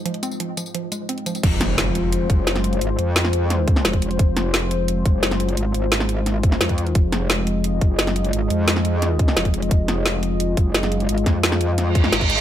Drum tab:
CC |----------------|x---------------|----------------|----------------|
HH |xxx-x-x-x-x-xxxx|x-x-x-x-x-x-xxxx|x-x-x-x-x-x-xxxx|x-x-x-x-x-x-xxxx|
TB |--xx--xx--x---xx|----------------|----------------|----------------|
SD |----------------|--o-o-------oo--|----oo--o--oo---|--o-o-------oo--|
BD |----------------|o---------o-----|----------o--o--|o---------o-----|

CC |----------------|----------------|----------------|----------------|
HH |x-x-x-x-x-x-xxxx|x-x-x-x-x-x-xxxx|x-x-x-x-x-x-xxxx|x-x-x-x-x-x-xxxx|
TB |----------------|----------------|----------------|----------------|
SD |----oo--o--oo---|--o-o-------oo--|----oo--o--oo---|--o-o-------oo--|
BD |----------o--o--|o---------o-----|----------o--o--|o---------o-----|

CC |----------------|
HH |xxx-x-x-x-x-xxx-|
TB |----------------|
SD |--o-oo--o--oo---|
BD |--o-------o--o--|